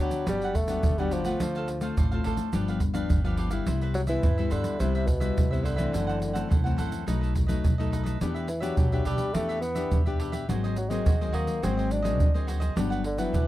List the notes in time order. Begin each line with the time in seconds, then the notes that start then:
Already playing: D3 F#3 B3 D4
0.00 D2 D4 G4 B4 F#5
0.11 pandeiro, shaker
0.27 G1 G2 F#3 G3 B3 D4 G4 B4 F#5, pandeiro, shaker, surdo
0.42 B4 F#5, pandeiro, shaker
0.46 G4
0.55 A3, muted cavaquinho stroke, pandeiro, shaker, surdo
0.68 F#3 B3 D4 G4 B4 F#5, pandeiro, shaker
0.83 G1 D3, pandeiro, shaker, surdo
0.98 F#3 G3 B3 D4 G4 B4 F#5, pandeiro, shaker
1.11 F3 D4 G4 B4 F#5, pandeiro, shaker
1.25 A3 C4 F4 G4 B4 F#5, pandeiro, shaker
1.40 D2 D3 D4 A4 C5 F5, pandeiro, shaker, surdo
1.55 A4 C5 F5, pandeiro, shaker
1.68 muted cavaquinho stroke, pandeiro, shaker
1.81 A3 C4 F4 A4 C5 F5, pandeiro, shaker
1.97 A1 A2 D4 A4 C5 F5, pandeiro, shaker, surdo
2.11 A3 C4 F4 A4 C5 F5, pandeiro, shaker
2.24 A1 D4 A4 C5 F5, pandeiro
2.37 pandeiro, shaker
2.53 G1 G2 F3 B3 D4 G4 B4 F5, pandeiro, shaker, surdo
2.68 G4 B4 F5, pandeiro, shaker
2.80 muted cavaquinho stroke, pandeiro, shaker, surdo
2.94 F3 B3 D4 G4 B4 F5, pandeiro, shaker
3.10 G1 D3, pandeiro, shaker, surdo
3.24 F3 B3 D4 G4 B4 F5, pandeiro, shaker
3.37 D4 G4 B4 F5, pandeiro
3.50 G3 B3 E4 G4 B4 F5, pandeiro, shaker
3.67 C2 C3 E4 B4 C5 E5, pandeiro, shaker, surdo
3.81 B4 C5 E5, pandeiro, shaker
3.94 F#3, muted cavaquinho stroke, pandeiro
4.07 E3 G3 B3 E4 B4 C5 E5, pandeiro, shaker
4.23 G2 E4 B4 C5 E5, pandeiro, shaker, surdo
4.38 G3 B3 E4 B4 C5 E5, pandeiro, shaker
4.50 G2 D3 E4 B4 C5 E5, pandeiro, shaker
4.64 pandeiro, shaker
4.79 C2 C3 G3 B3 E4 B4 C5 E5, pandeiro, shaker, surdo
4.95 B4 C5 E5, pandeiro, shaker
5.07 B2, muted cavaquinho stroke, pandeiro, shaker, surdo
5.20 G3 B3 E4 B4 C5 E5, pandeiro, shaker
5.37 C2 G2, pandeiro, shaker, surdo
5.51 C3 G3 B3 E4 B4 C5 E5, pandeiro, shaker
5.63 D3 E4 B4 C5 E5, pandeiro, shaker
5.76 E3 A3 B4 C5 E5, pandeiro, shaker
5.80 C4
5.92 F#1 F#2 E4 A4 C5 F#5, pandeiro, shaker, surdo
6.07 A4 C5 F#5, pandeiro, shaker
6.19 muted cavaquinho stroke, pandeiro, shaker
6.33 E3 A3 C4 A4 C5 F#5, pandeiro, shaker
6.49 C2 F#2 E4 A4 C5 F#5, pandeiro, shaker, surdo
6.64 E3 A3 C4 A4 C5 F#5, pandeiro, shaker
6.77 A1 E4 A4 C5 F#5, pandeiro, shaker
6.92 pandeiro, shaker
7.06 B1 B2 F#3 A3 D#4 A4 B4 D#5, pandeiro, shaker, surdo
7.21 A4 B4 D#5, pandeiro, shaker
7.34 muted cavaquinho stroke, pandeiro, shaker, surdo
7.47 F#3 A3 D#4 A4 B4 D#5, pandeiro, shaker
7.64 B1 F#2, pandeiro, shaker, surdo
7.78 F#3 A3 D#4 A4 B4 D#5, pandeiro, shaker
7.91 D#4 A4 B4 D#5, pandeiro, shaker
8.03 A4 B4 D#5, pandeiro, shaker
8.20 E2 E3 B3 D4 G4 B4 E5, pandeiro, shaker, surdo
8.34 G4 B4 E5, pandeiro, shaker
8.48 E3, muted cavaquinho stroke, pandeiro, shaker
8.60 F#3 B3 D4 G4 B4 E5, pandeiro, shaker
8.77 B1 B2 D4 G4 B4 E5, pandeiro, shaker, surdo
8.92 B3 D4 G4 B4 E5, pandeiro, shaker
9.04 B1 G3 D4 G4 B4 E5, pandeiro, shaker
9.18 pandeiro, shaker
9.33 E2 E3 A3 B3 D4 G4 B4 E5, pandeiro, shaker, surdo
9.49 G4 B4 E5, pandeiro, shaker
9.61 B3, muted cavaquinho stroke, pandeiro, shaker
9.75 B3 D4 G4 B4 E5, pandeiro, shaker
9.92 E2 B2, pandeiro, shaker, surdo
10.06 B3 D4 G4 B4 E5, pandeiro, shaker
10.19 D4 G4 B4 E5, pandeiro
10.32 G4 B4 E5, pandeiro, shaker
10.48 G#1 G#2 F#3 A#3 C4 F#4 G#4 C5 D#5, pandeiro, shaker, surdo
10.64 G#4 C5 D#5, pandeiro, shaker
10.76 F#3, muted cavaquinho stroke, pandeiro, shaker
10.89 F#3 G#3 A#3 C4 G#4 C5 D#5, pandeiro, shaker
11.06 D#2 D#3 F#4 G#4 C5 D#5, pandeiro, shaker, surdo
11.21 F#3 A#3 C4 G#4 C5 D#5, pandeiro, shaker
11.32 D#2 A#3 F#4 G#4 C5 D#5, pandeiro
11.47 pandeiro, shaker
11.62 G#1 G#2 F#3 A#3 C4 F#4 G#4 C5 D#5, pandeiro, shaker, surdo
11.77 G#4 C5 D#5, pandeiro, shaker
11.90 D4, muted cavaquinho stroke, pandeiro, shaker
12.02 F#3 A#3 C4 G#4 C5 D#5, pandeiro, shaker
12.20 D2, pandeiro, shaker, surdo
12.34 F#3 A#3 C4 G#4 C5 D#5, pandeiro, shaker
12.47 F#4 G#4 C5 D#5, pandeiro, shaker
12.60 G#4 C5 D#5, pandeiro, shaker
12.75 G1 G2 F#3 B3 D4 G4 B4 F#5, pandeiro, shaker, surdo
12.90 G4 B4 F#5, pandeiro, shaker
13.04 D3, muted cavaquinho stroke, pandeiro
13.18 E3 F#3 B3 D4 G4 B4 F#5, pandeiro, shaker
13.33 D2 D3 D4 G4 B4 F#5, pandeiro, shaker, surdo